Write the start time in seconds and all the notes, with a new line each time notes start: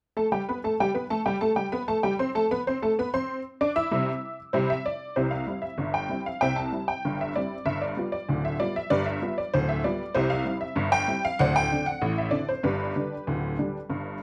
0.17 A3 A4 A5
0.32 G3 G4 G5
0.49 B3 B4 B5
0.64 A3 A4 A5
0.80 G3 G4 G5
0.94 B3 B4 B5
1.10 A3 A4 A5
1.26 G3 G4 G5
1.41 A3 A4 A5
1.56 G3 G4 G5
1.72 B3 B4 B5
1.88 A3 A4 A5
2.03 G3 G4 G5
2.19 C4 C5 C6
2.35 A3 A4 A5
2.51 B3 B4 B5
2.67 C4 C5 C6
2.82 A3 A4 A5
2.99 B3 B4 B5
3.14 C4 C5 C6
3.61 D4 D5 D6
3.76 E4 E5 E6
3.91 C3 G3 C4 E4
4.53 C3 G3 C4 E4 G4 C5
4.70 E5
4.86 D5
5.16 C2 C3 E4 G4 C5
5.31 F5
5.47 G3 C4 E4
5.62 E5
5.78 G1 G2
5.94 G5
6.09 G3 C4 E4
6.26 F5
6.41 C2 C3 C5 E5 G5
6.56 A5
6.73 G3 C4 E4
6.88 G5
7.05 G1 G2
7.21 E5
7.36 G3 C4 E4 D5
7.65 G1 G2 E5
7.81 D5
7.97 G3 B3 F4
8.12 D5
8.29 D1 D2
8.45 E5
8.60 G3 B3 F4 D5
8.76 E5
8.90 G1 G2 G4 B4 D5
9.06 E5
9.22 G3 B3 F4
9.38 D5
9.54 D1 D2 C5
9.69 E5
9.84 G3 B3 F4 D5
10.15 C2 C3 E4 G4 C5
10.30 F5
10.46 G3 C4 E4
10.61 E5
10.76 G1 G2
10.92 G5
11.08 G3 C4 E4
11.25 F5
11.39 D1 D2 C5 D5 F#5
11.56 G5
11.72 D3 C4 D4
11.86 F#5
12.02 A1 A2
12.18 E5
12.31 D3 C4 D4 D5
12.49 C5
12.63 G1 G2 D4 G4 B4
12.96 D3 G3 D4
13.27 D1 D2
13.59 D3 G3 D4
13.89 G1 G2